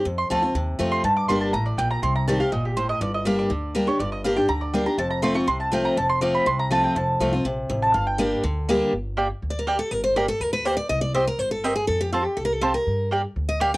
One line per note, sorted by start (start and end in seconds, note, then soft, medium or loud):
0.05 0.52 F2 medium
0.05 0.24 F2 medium
0.18 0.30 C6 loud
0.30 0.51 D2 medium
0.30 0.42 F3 loud
0.30 0.42 A3 loud
0.30 0.43 C4 loud
0.30 0.41 F4 loud
0.30 0.42 A5 medium
0.42 0.55 C4 medium
0.42 0.54 F4 medium
0.55 0.76 D#2 medium
0.55 1.02 C3 medium
0.79 1.00 F2 medium
0.79 1.02 F3 medium
0.79 1.03 A3 medium
0.79 1.03 C4 loud
0.79 1.03 F4 loud
0.92 1.04 C6 loud
1.04 1.23 G2 medium
1.04 1.51 G2 medium
1.04 1.12 A5 medium
1.17 1.28 D6 loud
1.28 1.50 G1 medium
1.28 1.52 G3 medium
1.28 1.52 A#3 loud
1.28 1.53 D4 loud
1.28 1.53 G4 loud
1.28 1.40 C6 medium
1.41 1.53 A5 loud
1.53 1.74 A1 medium
1.53 1.77 A2 medium
1.53 1.65 A#5 loud
1.66 1.78 D5 medium
1.77 1.99 A#1 medium
1.77 2.02 A#2 loud
1.77 1.90 G5 loud
1.91 2.02 A#5 loud
2.02 2.40 C2 loud
2.02 2.50 C3 medium
2.02 2.15 C6 medium
2.16 2.27 A#5 medium
2.28 2.39 D#3 medium
2.28 2.40 G3 loud
2.28 2.40 C4 loud
2.28 2.39 G4 loud
2.28 2.40 A5 medium
2.40 2.52 C4 medium
2.40 2.52 G4 medium
2.40 2.52 F5 loud
2.52 2.89 G1 medium
2.52 2.76 A#2 medium
2.52 2.64 D#5 medium
2.65 2.77 G4 medium
2.77 3.00 A2 medium
2.77 2.89 C5 medium
2.89 3.01 D#5 loud
3.01 3.39 G1 loud
3.01 3.48 G2 medium
3.01 3.14 D5 medium
3.14 3.26 D#5 medium
3.25 3.49 G3 loud
3.25 3.49 A#3 medium
3.25 3.50 D4 loud
3.25 3.50 G4 loud
3.25 3.38 F5 loud
3.39 3.73 D5 medium
3.50 3.88 D2 medium
3.50 3.97 D3 medium
3.75 3.87 G3 medium
3.75 3.87 A#3 loud
3.75 3.87 D4 loud
3.75 3.86 G4 loud
3.87 4.00 D4 medium
3.87 3.99 G4 medium
3.87 3.99 C#5 medium
3.99 4.37 G1 loud
3.99 4.47 G2 medium
3.99 4.12 D5 medium
4.12 4.24 D#5 medium
4.24 4.36 G3 medium
4.24 4.37 A#3 loud
4.24 4.37 D4 loud
4.24 4.35 G4 loud
4.24 4.37 F5 medium
4.36 4.49 D4 medium
4.36 4.48 G4 medium
4.36 4.48 G5 loud
4.49 4.87 D2 medium
4.49 4.61 A#5 loud
4.61 4.73 D5 medium
4.73 4.86 G3 medium
4.73 4.86 A#3 medium
4.73 4.86 D4 loud
4.73 4.85 G4 medium
4.73 4.86 G5 medium
4.86 4.98 D4 medium
4.86 4.98 G4 medium
4.86 4.98 A#5 loud
4.98 5.36 F1 medium
4.98 5.45 F2 loud
4.98 5.10 A5 medium
5.10 5.22 A#5 loud
5.22 5.35 F3 loud
5.22 5.35 A3 loud
5.22 5.35 C4 loud
5.22 5.33 F4 loud
5.22 5.35 C6 medium
5.34 5.47 C4 medium
5.34 5.47 F4 medium
5.34 5.47 C#6 loud
5.47 5.85 C2 medium
5.47 5.95 C3 medium
5.47 5.59 C6 medium
5.60 5.72 A5 medium
5.72 5.96 F3 medium
5.72 5.96 A3 medium
5.72 5.96 C4 loud
5.72 5.96 F4 loud
5.72 5.85 G5 loud
5.85 5.97 A#5 loud
5.97 6.35 F1 loud
5.97 6.44 F2 loud
5.97 6.09 A5 medium
6.09 6.21 C6 loud
6.21 6.45 F3 medium
6.21 6.45 A3 loud
6.21 6.45 C4 loud
6.21 6.46 F4 loud
6.21 6.34 D6 medium
6.35 6.46 B5 medium
6.46 6.84 C2 medium
6.46 6.93 C3 medium
6.46 6.59 C6 loud
6.59 6.71 A#5 loud
6.71 6.94 F3 medium
6.71 6.95 A3 medium
6.71 6.95 C4 medium
6.71 6.95 F4 loud
6.71 6.83 A5 loud
6.84 6.96 G5 loud
6.95 7.14 F1 loud
6.95 7.43 F2 medium
6.95 7.66 A5 medium
7.20 7.41 C2 medium
7.20 7.32 F3 loud
7.20 7.33 A3 loud
7.20 7.33 C4 loud
7.20 7.31 F4 loud
7.33 7.45 C4 medium
7.33 7.44 F4 medium
7.45 7.66 A#1 medium
7.45 7.92 C3 medium
7.70 7.91 A1 loud
7.70 7.93 F2 loud
7.82 7.94 A5 loud
7.94 8.32 G1 loud
7.94 8.41 G2 medium
7.94 8.06 F5 medium
8.07 8.30 G5 medium
8.18 8.42 G3 loud
8.18 8.43 A#3 loud
8.18 8.43 D4 loud
8.18 8.43 G4 loud
8.44 8.81 D2 medium
8.44 8.91 D3 medium
8.69 8.92 G3 medium
8.69 8.92 A#3 loud
8.69 8.92 D4 loud
8.69 8.93 G4 loud
8.93 9.30 G1 medium
9.17 9.26 A#3 medium
9.17 9.27 G4 medium
9.17 9.27 D5 medium
9.17 9.27 G5 loud
9.42 9.80 D2 medium
9.50 9.58 D5 medium
9.59 9.67 A#4 medium
9.67 9.76 A#3 medium
9.67 9.79 G4 medium
9.67 9.76 G4 loud
9.67 9.76 D5 loud
9.67 9.77 G5 loud
9.79 9.91 A4 medium
9.91 10.29 G1 loud
9.91 10.03 A#4 medium
10.04 10.16 C5 medium
10.16 10.25 A#3 medium
10.16 10.25 G4 medium
10.16 10.28 A#4 medium
10.16 10.26 D5 loud
10.16 10.26 G5 loud
10.28 10.41 A4 loud
10.40 10.78 D2 medium
10.40 10.52 A#4 medium
10.53 10.65 B4 medium
10.65 10.74 A#3 medium
10.65 10.75 G4 medium
10.65 10.76 C5 medium
10.65 10.75 D5 loud
10.65 10.75 G5 loud
10.77 10.89 D5 loud
10.89 11.27 C2 medium
10.89 11.01 D#5 loud
11.01 11.14 D5 loud
11.14 11.24 C4 medium
11.14 11.24 G4 medium
11.14 11.27 C5 medium
11.14 11.24 D#5 medium
11.14 11.24 G5 loud
11.27 11.39 A#4 loud
11.39 11.76 G1 medium
11.39 11.51 C5 medium
11.51 11.64 A4 medium
11.64 11.73 C4 loud
11.64 11.73 G4 medium
11.64 11.75 A#4 medium
11.64 11.73 D#5 loud
11.64 11.73 G5 loud
11.75 11.87 G#4 medium
11.87 12.26 F2 medium
11.87 12.00 A4 medium
12.00 12.12 G4 medium
12.12 12.22 C4 loud
12.12 12.24 F4 medium
12.12 12.22 F4 medium
12.12 12.22 C5 medium
12.12 12.23 A5 medium
12.24 12.37 G4 medium
12.37 12.75 C2 medium
12.37 12.44 A4 medium
12.45 12.54 A#4 loud
12.54 12.62 A4 medium
12.61 12.71 C4 loud
12.61 12.71 F4 medium
12.61 12.74 G4 medium
12.61 12.72 C5 loud
12.61 12.72 A5 medium
12.74 13.09 A#4 medium
12.87 13.24 G2 medium
13.11 13.20 A#3 medium
13.11 13.21 G4 medium
13.11 13.21 D5 loud
13.11 13.21 G5 loud
13.36 13.74 D2 medium
13.49 13.60 D#5 medium
13.60 13.69 A#3 loud
13.60 13.70 G4 loud
13.60 13.70 D5 loud
13.60 13.73 F5 medium
13.60 13.70 G5 loud
13.74 13.77 G5 loud